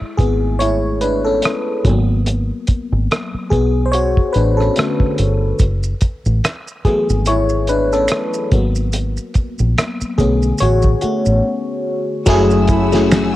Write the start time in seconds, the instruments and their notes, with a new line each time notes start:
Already playing: fm electric piano G#3 A3 E4
0.01 muted fingered electric bass stroke
0.17 fingered electric bass G#1, fm electric piano B3 G#4, kick, closed hi-hat
0.59 fm electric piano E4 C#5, closed hi-hat
1.01 fm electric piano D4 B4, closed hi-hat
1.24 fm electric piano C#4 A4
1.42 cross-stick, closed hi-hat
1.84 fingered electric bass G#1, fm electric piano F#3 A#3 B3, kick, closed hi-hat
2.26 closed hi-hat
2.67 kick, closed hi-hat
2.92 fingered electric bass G#1
3.11 cross-stick, closed hi-hat
3.34 muted fingered electric bass stroke
3.50 fingered electric bass B1, fm electric piano B3 G#4, kick, closed hi-hat
3.86 fm electric piano C5
3.92 fm electric piano F#4 C#5, closed hi-hat
4.17 kick
4.33 fingered electric bass A1, fm electric piano D4 B4, closed hi-hat
4.57 fm electric piano C#4 A4, cross-stick
4.76 fm electric piano D3 A3 C#4, cross-stick, closed hi-hat
5.00 kick
5.18 fingered electric bass G1, closed hi-hat
5.59 fingered electric bass F#1, kick, closed hi-hat, maracas
5.83 maracas
6.01 kick, closed hi-hat, maracas
6.26 fingered electric bass A1, maracas
6.44 finger snap, cross-stick, closed hi-hat, maracas
6.68 maracas
6.85 fm electric piano E3 F#3 A3 B3 G#4, muted fingered electric bass stroke, kick, cross-stick, closed hi-hat
7.09 fingered electric bass G#1, maracas
7.26 fm electric piano E4 C#5, closed hi-hat, maracas
7.49 maracas
7.67 fm electric piano D4 B4, closed hi-hat, maracas
7.93 fm electric piano C#4 A4, cross-stick, maracas
8.08 finger snap, cross-stick, closed hi-hat, maracas
8.34 maracas
8.51 fingered electric bass G#1, fm electric piano F#3 A#3 B3, kick, closed hi-hat
8.75 maracas
8.93 closed hi-hat, maracas
9.17 maracas
9.34 kick, closed hi-hat, maracas
9.59 fingered electric bass A#1, maracas
9.78 finger snap, cross-stick, closed hi-hat, maracas
10.01 muted fingered electric bass stroke, maracas
10.18 fingered electric bass B1, fm electric piano D3 A3 B3 C#4 G#4, kick, closed hi-hat, maracas
10.42 maracas
10.58 fingered electric bass A1, fm electric piano C#5, closed hi-hat, maracas
10.63 fm electric piano F#4
10.82 kick, maracas
11.01 fm electric piano A3 F#4, muted fingered electric bass stroke, closed hi-hat, maracas
11.26 fingered electric bass A1, maracas
12.26 fingered electric bass F#1, fm electric piano F#3 A3 C#4 E4 G#4, string section A3 F#5 G#5 E6, kick, closed hi-hat, maracas
12.51 maracas
12.68 trombone section C#3 A3 E4, kick, closed hi-hat, maracas
12.92 fm electric piano F#3 A3 C#4 E4 G#4, snare, maracas
13.11 finger snap, snare, closed hi-hat, maracas